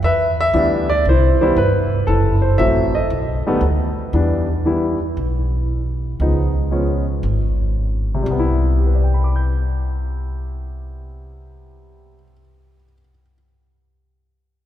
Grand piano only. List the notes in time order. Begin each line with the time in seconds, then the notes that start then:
0.04 B4 E5
0.41 E5
0.54 E3 G3 B3 D4
0.90 D5
1.09 E4 C5
1.41 E3 G3 B3 E4 C5
1.58 B4
2.07 E4 A4
2.42 C5
2.58 E3 F#3 A3 C4 E5
2.95 A4 D#5
3.46 D#3 G3 A3 B3
4.14 E3 G3 B3 D4
4.65 E3 G3 B3 E4
6.21 F3 G#3 B3 D#4
6.71 F3 G#3 B3 C#4
8.14 C3
8.22 G3
8.31 B3
8.39 E4
8.79 G4
8.87 B4
8.95 D5
9.04 G5
9.14 B5
9.24 D6
9.36 G6